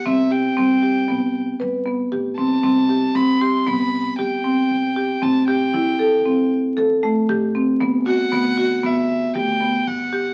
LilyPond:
<<
  \new Staff \with { instrumentName = "Violin" } { \time 5/4 \key c \lydian \tempo 4 = 116 e''8 g''2 r2 a''8~ | a''4 b''8 c'''8 b''4 g''2 | a''8 g''2 r2 r8 | r8 fis''4. e''4 g''4 fis''4 | }
  \new Staff \with { instrumentName = "Marimba" } { \time 5/4 \key c \lydian c'8 g'8 c'8 g'8 b4 b'8 b8 g'8 c'8 | c'8 g'8 c'8 g'8 b4 g'8 c'4 g'8 | c'8 g'8 e'8 a'8 c'4 a'8 a8 g'8 c'8 | b8 fis'8 b8 fis'8 b4 g'8 b4 g'8 | }
  \new Staff \with { instrumentName = "Upright bass" } { \clef bass \time 5/4 \key c \lydian c,4 g,4 c,4 g,4 a,,8 b,,8 | c,4 g,4 c,4 g,4 c,4 | a,,4 e,4 a,,4 e,4 a,,4 | g,,4 d,4 g,,4 d,4 g,,4 | }
>>